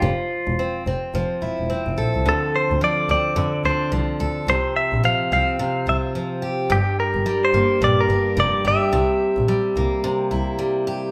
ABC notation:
X:1
M:4/4
L:1/16
Q:"Swing 16ths" 1/4=108
K:Cmix
V:1 name="Clean electric guitar"
F6 z8 z2 | A2 c2 d2 d4 c2 z4 | c2 e2 f2 f4 e2 z4 | G2 B3 c3 d B3 d2 e2- |
e12 z4 |]
V:2 name="Steel-string acoustic guitar" clef=bass
F,4 C2 C2 F,2 E2 C2 A2 | D,4 F,2 C2 D,2 D2 F,2 A2 | C,4 F,2 C2 C,2 F2 F,2 G2 | G,,4 G,2 B,2 G,,2 D2 G,2 G2 |
C,4 G,2 B,2 C,2 E2 G,2 G2 |]
V:3 name="Double bass" clef=bass
F,,,3 E,,,3 F,,,2 F,,,2 E,,, E,,, z F,,, B,,, C,, | D,,3 D,,3 D,,2 F,,2 D,,2 C,,2 D,,2 | C,,3 B,,,3 C,,4 C,,4 z2 | G,,,3 G,,,3 G,,,2 B,,,2 G,,,2 F,,,2 G,,,2 |
C,,3 B,,,3 C,,4 C,,4 z2 |]